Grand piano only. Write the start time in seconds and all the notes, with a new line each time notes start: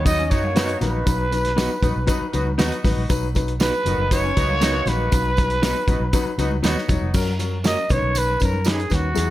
0.05 F#3 D#4 C#5
0.30 F#3 D#4 C#5
0.55 F#3 D#4 B4
0.81 F#3 D#4 B4
1.06 F#3 D#4 B4
1.31 F#3 D#4 B4
1.56 F#3 D#4 B4
1.82 F#3 D#4 B4
2.07 F#3 D#4 B4
2.33 F#3 D#4 B4
2.58 F#3 D#4 B4
2.84 F#3 D#4 B4
3.09 F#3 D#4 B4
3.35 F#3 D#4 B4
3.60 F#3 D#4 B4
3.86 F#3 D#4 A#4
4.12 F#3 D#4 B4
4.36 F#3 D#4 B4
4.62 F#3 D#4 B4
4.86 F#3 D#4 B4
5.12 F#3 D#4 B4
5.37 F#3 D#4 B4
5.62 F#3 D#4 B4
5.87 F#3 D#4 B4
6.13 F#3 D#4 B4
6.38 F#3 D#4 B4
6.63 F#3 D#4 C#5
6.88 F#3 D#4 C#5
7.14 F#3 C#4 A#4
7.39 F#3 C#4 A#4
7.64 F#3 C#4 A#4
7.89 D3 C#4 B4
7.95 D#3
8.40 D#3 C#4 B4
8.65 D#3 C#4 B4
8.90 D#3 C#4 B4
9.14 F#3 E4 G#4